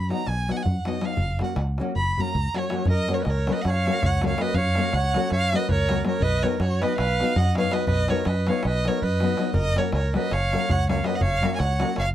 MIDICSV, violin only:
0, 0, Header, 1, 2, 480
1, 0, Start_track
1, 0, Key_signature, 6, "major"
1, 0, Tempo, 374298
1, 1517, Time_signature, 9, 3, 24, 8
1, 5589, Tempo, 370370
1, 15685, End_track
2, 0, Start_track
2, 0, Title_t, "Violin"
2, 0, Program_c, 0, 40
2, 146, Note_on_c, 0, 82, 92
2, 369, Note_on_c, 0, 80, 98
2, 389, Note_off_c, 0, 82, 0
2, 657, Note_on_c, 0, 78, 96
2, 676, Note_off_c, 0, 80, 0
2, 729, Note_on_c, 0, 80, 78
2, 748, Note_off_c, 0, 78, 0
2, 809, Note_on_c, 0, 78, 78
2, 828, Note_off_c, 0, 80, 0
2, 1135, Note_on_c, 0, 75, 83
2, 1154, Note_off_c, 0, 78, 0
2, 1357, Note_on_c, 0, 77, 91
2, 1377, Note_off_c, 0, 75, 0
2, 1824, Note_off_c, 0, 77, 0
2, 1842, Note_on_c, 0, 78, 65
2, 2024, Note_off_c, 0, 78, 0
2, 2522, Note_on_c, 0, 83, 98
2, 2829, Note_on_c, 0, 82, 107
2, 2848, Note_off_c, 0, 83, 0
2, 3308, Note_on_c, 0, 73, 86
2, 3327, Note_off_c, 0, 82, 0
2, 3700, Note_off_c, 0, 73, 0
2, 3726, Note_on_c, 0, 75, 111
2, 4030, Note_on_c, 0, 73, 72
2, 4050, Note_off_c, 0, 75, 0
2, 4145, Note_off_c, 0, 73, 0
2, 4153, Note_on_c, 0, 75, 54
2, 4231, Note_on_c, 0, 73, 81
2, 4251, Note_off_c, 0, 75, 0
2, 4523, Note_on_c, 0, 75, 95
2, 4542, Note_off_c, 0, 73, 0
2, 4637, Note_on_c, 0, 78, 82
2, 4656, Note_off_c, 0, 75, 0
2, 4746, Note_on_c, 0, 77, 116
2, 4766, Note_off_c, 0, 78, 0
2, 5211, Note_on_c, 0, 78, 109
2, 5230, Note_off_c, 0, 77, 0
2, 5438, Note_off_c, 0, 78, 0
2, 5475, Note_on_c, 0, 77, 97
2, 5666, Note_on_c, 0, 75, 108
2, 5686, Note_off_c, 0, 77, 0
2, 5837, Note_on_c, 0, 77, 108
2, 5856, Note_off_c, 0, 75, 0
2, 6346, Note_on_c, 0, 78, 108
2, 6366, Note_off_c, 0, 77, 0
2, 6838, Note_off_c, 0, 78, 0
2, 6869, Note_on_c, 0, 77, 127
2, 7145, Note_on_c, 0, 75, 122
2, 7165, Note_off_c, 0, 77, 0
2, 7345, Note_off_c, 0, 75, 0
2, 7353, Note_on_c, 0, 73, 113
2, 7768, Note_off_c, 0, 73, 0
2, 7822, Note_on_c, 0, 73, 93
2, 8005, Note_on_c, 0, 75, 121
2, 8025, Note_off_c, 0, 73, 0
2, 8276, Note_on_c, 0, 73, 92
2, 8296, Note_off_c, 0, 75, 0
2, 8494, Note_off_c, 0, 73, 0
2, 8505, Note_on_c, 0, 73, 86
2, 8791, Note_on_c, 0, 75, 93
2, 8810, Note_off_c, 0, 73, 0
2, 8986, Note_off_c, 0, 75, 0
2, 8993, Note_on_c, 0, 77, 111
2, 9513, Note_on_c, 0, 78, 110
2, 9532, Note_off_c, 0, 77, 0
2, 9753, Note_off_c, 0, 78, 0
2, 9765, Note_on_c, 0, 77, 103
2, 9963, Note_on_c, 0, 75, 90
2, 9982, Note_off_c, 0, 77, 0
2, 10163, Note_off_c, 0, 75, 0
2, 10176, Note_on_c, 0, 75, 109
2, 10440, Note_on_c, 0, 73, 90
2, 10459, Note_off_c, 0, 75, 0
2, 10656, Note_on_c, 0, 75, 79
2, 10676, Note_off_c, 0, 73, 0
2, 10936, Note_on_c, 0, 77, 86
2, 10956, Note_off_c, 0, 75, 0
2, 11152, Note_off_c, 0, 77, 0
2, 11164, Note_on_c, 0, 75, 104
2, 11450, Note_on_c, 0, 73, 100
2, 11469, Note_off_c, 0, 75, 0
2, 11658, Note_off_c, 0, 73, 0
2, 11673, Note_on_c, 0, 75, 84
2, 12281, Note_off_c, 0, 75, 0
2, 12340, Note_on_c, 0, 75, 117
2, 12621, Note_on_c, 0, 73, 94
2, 12641, Note_off_c, 0, 75, 0
2, 12822, Note_off_c, 0, 73, 0
2, 12830, Note_on_c, 0, 73, 73
2, 13083, Note_off_c, 0, 73, 0
2, 13107, Note_on_c, 0, 75, 96
2, 13330, Note_on_c, 0, 77, 110
2, 13349, Note_off_c, 0, 75, 0
2, 13827, Note_on_c, 0, 78, 117
2, 13846, Note_off_c, 0, 77, 0
2, 14057, Note_off_c, 0, 78, 0
2, 14065, Note_on_c, 0, 77, 83
2, 14272, Note_on_c, 0, 75, 89
2, 14292, Note_off_c, 0, 77, 0
2, 14401, Note_on_c, 0, 78, 88
2, 14420, Note_off_c, 0, 75, 0
2, 14475, Note_on_c, 0, 77, 127
2, 14494, Note_off_c, 0, 78, 0
2, 14892, Note_off_c, 0, 77, 0
2, 14917, Note_on_c, 0, 80, 68
2, 14967, Note_on_c, 0, 78, 98
2, 14986, Note_off_c, 0, 80, 0
2, 15464, Note_off_c, 0, 78, 0
2, 15483, Note_on_c, 0, 77, 112
2, 15605, Note_off_c, 0, 77, 0
2, 15685, End_track
0, 0, End_of_file